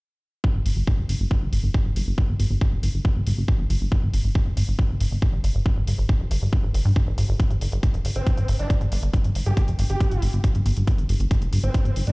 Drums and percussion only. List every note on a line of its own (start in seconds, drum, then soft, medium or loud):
0.44 kick loud
0.66 open hi-hat loud
0.87 kick loud
1.09 open hi-hat loud
1.31 kick loud
1.53 open hi-hat loud
1.74 kick loud
1.96 open hi-hat loud
2.18 kick loud
2.40 open hi-hat loud
2.61 kick loud
2.83 open hi-hat loud
3.05 kick loud
3.27 open hi-hat loud
3.48 kick loud
3.70 open hi-hat loud
3.92 kick loud
4.14 open hi-hat loud
4.35 kick loud
4.57 open hi-hat loud
4.79 kick loud
5.00 open hi-hat loud
5.22 kick loud
5.44 open hi-hat loud
5.66 kick loud
5.87 open hi-hat loud
6.09 kick loud
6.31 open hi-hat loud
6.53 kick loud
6.74 open hi-hat loud
6.96 kick loud
7.18 open hi-hat loud
7.40 kick loud
7.40 closed hi-hat medium
7.50 closed hi-hat medium
7.61 open hi-hat loud
7.72 closed hi-hat soft
7.83 kick loud
7.83 closed hi-hat medium
7.94 closed hi-hat medium
8.05 open hi-hat loud
8.16 closed hi-hat soft
8.27 kick loud
8.27 closed hi-hat medium
8.37 closed hi-hat soft
8.48 open hi-hat loud
8.59 closed hi-hat medium
8.70 kick loud
8.70 closed hi-hat medium
8.81 closed hi-hat soft
8.92 open hi-hat loud
9.03 closed hi-hat soft
9.14 kick loud
9.14 closed hi-hat medium
9.24 closed hi-hat medium
9.35 open hi-hat loud
9.46 closed hi-hat medium
9.57 kick loud
9.57 closed hi-hat medium
9.68 closed hi-hat medium
9.79 open hi-hat loud
9.90 closed hi-hat soft
10.00 kick loud
10.00 closed hi-hat medium
10.11 closed hi-hat medium
10.22 open hi-hat loud
10.33 closed hi-hat medium
10.44 kick loud
10.44 closed hi-hat medium
10.55 closed hi-hat soft
10.66 open hi-hat loud
10.77 closed hi-hat medium
10.87 kick loud
10.87 closed hi-hat medium
10.98 closed hi-hat medium
11.09 open hi-hat loud
11.20 closed hi-hat medium
11.31 kick loud
11.31 closed hi-hat medium
11.42 closed hi-hat medium
11.53 open hi-hat loud
11.63 closed hi-hat medium
11.74 kick loud
11.74 closed hi-hat medium
11.85 closed hi-hat medium
11.96 open hi-hat loud
12.07 closed hi-hat medium